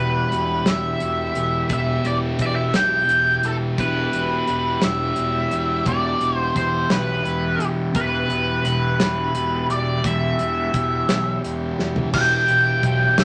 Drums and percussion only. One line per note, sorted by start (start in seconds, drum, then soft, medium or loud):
0.32 closed hi-hat medium
0.66 snare loud
0.66 closed hi-hat medium
1.00 closed hi-hat medium
1.35 closed hi-hat medium
1.69 kick loud
1.69 closed hi-hat medium
2.05 closed hi-hat soft
2.39 kick medium
2.39 closed hi-hat medium
2.74 snare loud
2.74 closed hi-hat medium
3.09 closed hi-hat medium
3.43 closed hi-hat medium
3.78 kick loud
3.78 closed hi-hat medium
4.13 closed hi-hat medium
4.47 closed hi-hat medium
4.81 snare loud
4.81 closed hi-hat medium
5.16 closed hi-hat medium
5.51 closed hi-hat medium
5.86 kick loud
5.86 closed hi-hat medium
6.21 closed hi-hat soft
6.56 kick medium
6.56 closed hi-hat medium
6.90 snare loud
6.90 closed hi-hat medium
7.25 closed hi-hat medium
7.60 closed hi-hat medium
7.95 kick loud
7.95 closed hi-hat medium
8.30 closed hi-hat soft
8.65 closed hi-hat medium
9.00 snare loud
9.00 closed hi-hat medium
9.35 closed hi-hat medium
9.70 closed hi-hat medium
10.04 kick loud
10.04 closed hi-hat medium
10.39 closed hi-hat medium
10.74 kick medium
10.74 closed hi-hat medium
11.09 snare loud
11.09 closed hi-hat medium
11.44 closed hi-hat medium
11.79 snare medium
11.96 floor tom medium
12.13 kick loud
12.13 crash loud
12.48 closed hi-hat medium
12.83 kick medium
12.83 closed hi-hat medium
13.18 snare loud
13.18 closed hi-hat medium